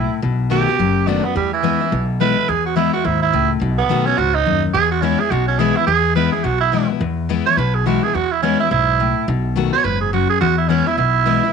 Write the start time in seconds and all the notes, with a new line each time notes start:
Already playing: A2 E4
0.22 B1 B2
0.50 D#3 A3 B3 F#4 G4
0.68 B3 F#4
0.79 F#1 F#2
1.07 D#3 A3 B3 D4 F#4
1.23 B3 F#4
1.35 E2 G3
1.53 E3
1.63 E3 G#3 B3 E4
1.81 B3 E4
1.92 B1 B2
2.20 E3 G#3 B3 E4 B4
2.37 B3 E4
2.49 E2 G#4
2.66 F#4
2.76 E3 G#3 B3 E4
2.93 B3 E4 F#4
3.04 D#2 G#2 E4
3.22 E4
3.33 C#2 A2
3.61 B1 B2
3.78 B3
3.89 B1 D#3 A3 B3 F#4
4.06 B3 C#4 F#4
4.18 C#2 G#2 F#4
4.34 D#4
4.46 D#2 F#2
4.74 E2 G#4
4.91 F#4
5.02 E3 G#3 B3 C#4 E4
5.20 B3 E4 G#4
5.31 B1 B2 F#4
5.48 C#4
5.59 E3 G#3 B3 E4 G#4
5.76 B3 E4
5.87 E2 G#4
6.15 E3 G#3 B3 E4 B4
6.32 B3 E4 G#4
6.44 B1 B2 F#4
6.61 E4
6.72 E3 G#3 B3 E4
6.89 B3 E4
7.00 E2
7.29 E3 G#3 B3 E4
7.46 B3 E4 C#5
7.57 B1 B2 B4
7.74 G#4
7.86 E3 G#3 B3 E4 F#4
8.03 B3 E4 G#4
8.14 E2 F#4
8.32 E4
8.42 E3 G#3 B3 C#4 E4
8.59 B3 E4
8.71 B1 G#2 E4
9.00 A2
9.28 B1 B2
9.56 D#3 A3 B3 F#4
9.73 B3 F#4 C#5
9.84 F#1 G#2 B4
10.01 G#4
10.13 F#2 F#4
10.30 G#4
10.41 E2 F#4
10.58 E4
10.69 E3 G#3 B3 C#4 E4
10.86 B3 E4
10.97 B1 B2 E4
11.25 E3 G#3 B3 E4
11.43 B3 E4